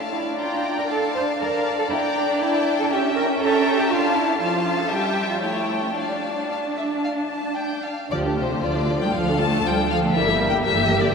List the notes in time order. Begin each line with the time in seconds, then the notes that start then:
Already playing: D4 D5 F5 A5
0.13 E4
0.39 F4 G5 A#5
0.78 A#4
0.90 A4 F5 A5
1.15 C5
1.40 A#4 D5 F5 A5
1.79 A4
1.90 D4 E4 G5 A#5
2.15 D4
2.40 E4 G5 A5
2.79 A4
2.91 C#4 G4 E5 G5
3.15 A#4
3.41 A4 E5 G5 A#5
3.79 G4
3.90 D4 F4 F5 A5
4.15 E4
4.40 F3 F4 F5 A5
4.79 A4
4.91 G3 G4 E5 G5
5.30 F4
5.42 A3 E4 C#5 G5 A5
5.83 C#4
5.96 D4 D5 F5 A5
6.51 F5
6.78 E5
7.04 F5
7.31 A5
7.58 G5
7.86 F5
8.11 D2 D3 F3 F4 G4 D5
8.24 A3 D4
8.37 C3 F3 F4 C5
8.50 A3 D4
8.63 D2 D3 F3 F4 D5
8.76 A3 D4
8.89 F3 F4
9.01 G3 A3 D4 G5
9.14 D2 F3 F4 A4 F5
9.27 A3 D4
9.39 F3 A3 F4 A5
9.52 A3 D4
9.65 D2 F3 G3 F4 G5
9.78 A3 D4
9.90 F3 F4 F5
10.03 A3 D4
10.15 G1 E3 G3 E4 A#4 E5
10.28 A#3 G4
10.40 G3 A#4
10.49 G3 A#3 G4 G5
10.65 G1 E3 G3 G4 A#4 E5
10.76 A#3 G4
10.89 G3 A#4
11.02 D3 A#3 G4 D5